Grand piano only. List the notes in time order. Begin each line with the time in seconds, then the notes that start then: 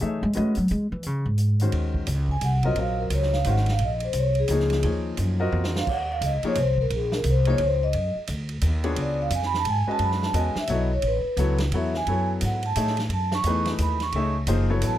0.01 A3 D#4 G#4 C#5 E5
0.35 G#3 C#4 F#4 B4 D#5
1.61 D#3 G#3 C#4 F#4 C5
2.64 F#3 C4 F4 A#4 D#5
2.78 F#3 C4 F4 A#4 D#5
3.46 D#3 G#3 C#4 F#4 C5
4.50 F3 A#3 D#4 G#4 C#5
4.84 F3 A#3 D#4 G#4 C#5
5.40 C4 F4 F#4 A#4 D#5
6.44 F3 A#3 D#4 G#4 C#5
7.47 F3 A#3 D#4 G#4 C#5
8.84 B3 D4 F4 G#4 C#5
9.87 G#3 C#4 F#4 B4 D#5
10.35 G#3 C#4 F#4 B4 D#5
10.70 F#3 B3 E4 A4 C#5
11.38 F#3 B3 E4 A4 C#5
11.74 F#3 B3 E4 A4 C#5
12.08 F#3 B3 E4 A4 C#5
12.76 A3 D#4 G#4 C#5 E5
13.46 E3 A3 D#4 G#4 B4
14.15 A3 D#4 G#4 C#5 E5
14.48 F3 A#3 D#4 G#4 C5
14.70 F#3 B3 E4 A4 C#5